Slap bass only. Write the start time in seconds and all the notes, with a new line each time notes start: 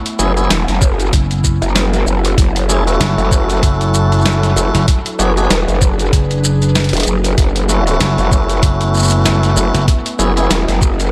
1.13 F#1
3.00 F#1
3.63 F#1
4.25 F#1
4.75 F#1
6.13 F#1
6.75 F#1
8.01 F#1
8.63 F#1
9.26 F#1
9.75 F#1